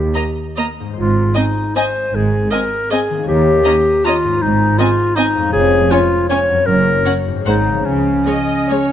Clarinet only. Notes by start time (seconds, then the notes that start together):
Already playing: G4
0.97 F4
1.36 D#4
1.76 C5
2.15 G#4
2.51 A#4
2.91 G#4
3.28 G4
4.05 F4
4.42 D#4
4.78 F4
5.16 D#4
5.53 G#4
5.91 F4
6.29 C#5
6.66 A#4
7.46 D#4
7.85 C#4